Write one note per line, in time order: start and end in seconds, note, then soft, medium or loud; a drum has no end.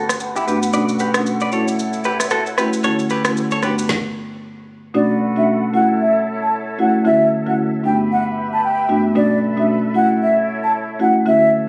0.00 0.52 C#4 medium
0.00 0.72 G4 medium
0.00 1.50 B4 medium
0.00 3.85 F#5 medium
0.09 cross-stick medium
0.09 shaker loud
0.20 shaker medium
0.36 0.45 E4 medium
0.36 0.45 G4 medium
0.36 shaker medium
0.47 0.71 G2 medium
0.47 0.72 A3 medium
0.47 0.72 B3 medium
0.47 0.72 D4 medium
0.47 0.72 F#4 medium
0.47 0.59 G4 medium
0.47 0.59 B4 medium
0.47 shaker medium
0.63 shaker medium
0.73 1.11 B2 medium
0.73 1.11 A3 medium
0.73 1.11 C#4 medium
0.73 1.11 D4 medium
0.73 1.52 F#4 medium
0.73 1.11 F#4 loud
0.73 2.82 A4 medium
0.73 0.86 B4 medium
0.73 0.85 D5 medium
0.73 shaker medium
0.89 shaker medium
0.99 1.12 G4 medium
0.99 1.12 B4 medium
0.99 shaker medium
1.14 1.32 B2 medium
1.14 1.32 A3 medium
1.14 1.32 C#4 medium
1.14 1.32 D4 medium
1.14 1.32 F#4 medium
1.14 cross-stick loud
1.14 shaker medium
1.26 shaker medium
1.40 1.50 B4 medium
1.40 1.50 D5 medium
1.40 shaker medium
1.52 1.72 A3 medium
1.52 1.72 C#4 medium
1.52 1.72 E4 medium
1.52 2.83 E4 medium
1.52 1.72 F#4 medium
1.52 1.65 A4 medium
1.52 3.61 C#5 medium
1.52 1.64 C#5 medium
1.52 shaker medium
1.68 shaker medium
1.79 shaker medium
1.93 shaker soft
2.04 2.17 G4 medium
2.04 2.17 B4 medium
2.04 shaker soft
2.20 cross-stick medium
2.20 shaker loud
2.30 2.44 F#4 medium
2.30 2.43 A4 medium
2.30 cross-stick medium
2.30 shaker medium
2.46 shaker soft
2.57 2.77 A3 medium
2.57 2.77 C#4 medium
2.57 2.77 E4 medium
2.57 2.77 F#4 medium
2.57 2.70 G4 medium
2.57 2.70 B4 medium
2.57 cross-stick medium
2.57 shaker medium
2.73 shaker medium
2.83 3.22 D3 medium
2.83 3.22 A3 medium
2.83 3.22 C#4 medium
2.83 3.62 C#4 medium
2.83 3.22 E4 medium
2.83 3.22 F#4 loud
2.83 3.62 A4 medium
2.83 2.96 A4 medium
2.83 2.96 C#5 loud
2.83 shaker medium
2.99 shaker medium
3.10 3.23 G4 medium
3.10 3.22 B4 medium
3.10 shaker medium
3.25 3.42 D3 medium
3.25 3.43 A3 medium
3.25 3.43 C#4 medium
3.25 3.43 E4 medium
3.25 3.43 F#4 medium
3.25 cross-stick loud
3.25 shaker medium
3.37 shaker medium
3.51 3.61 A4 medium
3.51 3.60 C#5 medium
3.51 shaker medium
3.63 3.82 G2 medium
3.63 3.82 A3 medium
3.63 3.83 B3 medium
3.63 3.89 D4 medium
3.63 3.83 D4 medium
3.63 3.83 F#4 medium
3.63 3.89 G4 medium
3.63 3.75 G4 medium
3.63 3.89 B4 medium
3.63 3.75 B4 medium
3.63 cross-stick medium
3.63 shaker medium
3.79 shaker medium
3.89 kick loud
3.89 snare medium
4.94 5.32 B2 medium
4.94 5.32 A3 medium
4.94 5.32 C#4 medium
4.94 5.32 D4 medium
4.94 5.73 F#4 medium
4.94 5.32 F#4 loud
4.94 7.81 A4 medium
4.94 5.73 B4 medium
4.94 5.18 D5 loud
4.94 5.73 F#5 medium
5.36 5.53 B2 medium
5.36 5.53 A3 medium
5.36 5.53 C#4 medium
5.36 5.53 D4 medium
5.36 5.53 F#4 medium
5.36 5.46 E5 medium
5.73 5.93 A3 medium
5.73 5.93 C#4 medium
5.73 7.04 E4 medium
5.73 5.93 E4 medium
5.73 5.93 F#4 medium
5.73 7.82 C#5 medium
5.73 11.69 E5 medium
5.73 5.87 F#5 medium
6.01 6.13 E5 medium
6.43 6.51 A5 medium
6.78 7.03 A3 medium
6.78 7.03 C#4 medium
6.78 7.03 E4 medium
6.78 7.03 F#4 medium
6.78 6.92 F#5 medium
7.05 7.43 D3 loud
7.05 7.43 A3 medium
7.05 7.43 C#4 medium
7.05 7.43 E4 medium
7.05 7.43 F#4 loud
7.05 7.28 E5 loud
7.46 7.63 D3 medium
7.46 7.64 A3 medium
7.46 7.64 C#4 medium
7.46 7.64 E4 medium
7.46 7.64 F#4 medium
7.46 7.57 F#5 medium
7.84 8.03 G2 medium
7.84 8.03 A3 medium
7.84 8.03 B3 medium
7.84 8.04 D4 medium
7.84 8.04 F#4 medium
7.84 9.14 G4 medium
7.84 9.14 B4 medium
7.84 7.98 G5 loud
8.12 8.24 F#5 medium
8.53 8.62 A5 medium
8.64 9.03 G5 medium
8.89 9.13 G2 medium
8.89 9.14 A3 medium
8.89 9.14 B3 medium
8.89 9.14 D4 medium
8.89 9.14 F#4 medium
9.15 9.53 B2 loud
9.15 9.53 A3 medium
9.15 9.53 C#4 medium
9.15 9.53 D4 medium
9.15 9.54 F#4 loud
9.15 9.93 A4 medium
9.15 9.94 B4 medium
9.15 9.39 D5 loud
9.57 9.74 B2 medium
9.57 9.74 A3 medium
9.57 9.74 C#4 medium
9.57 9.74 D4 medium
9.57 9.74 F#4 medium
9.57 9.67 E5 medium
9.94 10.14 A3 medium
9.94 10.14 C#4 medium
9.94 11.25 E4 medium
9.94 10.14 E4 medium
9.94 10.14 F#4 medium
9.94 11.00 A4 medium
9.94 11.01 C#5 medium
9.94 10.08 F#5 loud
10.22 10.35 E5 medium
10.64 10.72 A5 medium
10.99 11.24 A3 medium
10.99 11.24 C#4 medium
10.99 11.24 E4 medium
10.99 11.24 F#4 medium
10.99 11.14 F#5 medium
11.26 11.64 D3 loud
11.26 11.64 A3 medium
11.26 11.64 C#4 medium
11.26 11.64 E4 medium
11.26 11.64 F#4 loud
11.26 11.69 A4 medium
11.26 11.69 C#5 medium
11.26 11.49 E5 loud